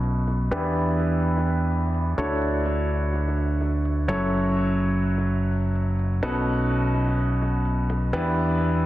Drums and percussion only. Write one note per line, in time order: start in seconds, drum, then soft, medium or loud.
0.03 ride medium
0.27 snare soft
0.27 ride medium
0.51 ride medium
0.75 ride medium
0.99 ride medium
1.22 ride medium
1.37 snare soft
1.46 ride medium
1.60 ride soft
1.71 open hi-hat medium
1.94 ride medium
2.32 ride soft
2.41 ride medium
2.65 snare medium
2.65 ride medium
2.89 ride medium
3.13 snare soft
3.13 ride medium
3.27 snare soft
3.36 ride medium
3.61 snare soft
3.61 ride medium
3.85 ride medium
4.08 snare medium
4.33 ride medium
4.56 ride medium
4.80 ride medium
5.03 ride medium
5.18 snare soft
5.27 ride medium
5.41 ride soft
5.51 open hi-hat medium
5.75 ride medium
5.99 ride medium
6.13 ride soft
6.23 ride medium
6.46 snare medium
6.46 ride medium
6.71 ride medium
6.94 snare soft
6.94 ride medium
7.08 snare soft
7.17 ride medium
7.41 snare soft
7.41 ride medium
7.65 ride medium
7.89 snare medium
7.89 ride medium
8.36 ride medium
8.61 ride medium